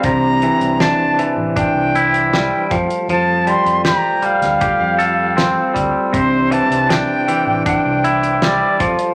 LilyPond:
<<
  \new Staff \with { instrumentName = "Flute" } { \time 4/4 \key c \mixolydian \tempo 4 = 79 bes''4 a''8 r8 g''4 g''8. r16 | a''8 c'''8 bes''8 f''2 r8 | c''8 a''8 g''4 g''4 d''8. r16 | }
  \new Staff \with { instrumentName = "Transistor combo organ" } { \time 4/4 \key c \mixolydian <e d' c''>2.~ <e d' c''>8 <g a f'>8~ | <g a f'>1 | <e d' c''>2.~ <e d' c''>8 <g f' a'>8 | }
  \new Staff \with { instrumentName = "Clean electric guitar" } { \clef bass \time 4/4 \key c \mixolydian c8 e8 d'8 e8 d'8 e'8 g8 f8 | f8 g8 g'8 g8 g'8 a'8 c'8 g8 | c8 e8 d'8 e8 d'8 e'8 g8 f8 | }
  \new Staff \with { instrumentName = "Fingered electric bass" } { \clef bass \time 4/4 \key c \mixolydian c,8. c,8 r8 a,,8 c,4~ c,16 f,16 r16 | f,8. f,8 r8 d,8 f,4~ f,16 d,16 r16 | c,8. c,8 r8 a,,8 c,4~ c,16 f,16 r16 | }
  \new DrumStaff \with { instrumentName = "Drums" } \drummode { \time 4/4 <hh bd>8 hh16 hh16 <hh sn>8 hh8 <hh bd>8 hh16 hh16 <hh sn>8 <hh bd>16 hh16 | hh8 hh16 hh16 <hh sn>8 hh16 <hh sn>16 <hh bd>8 hh8 <hh sn>8 <hh bd>8 | <hh bd>8 hh16 hh16 <hh sn>8 hh8 <hh bd>8 hh16 hh16 <hh sn>8 <hh bd>16 hh16 | }
>>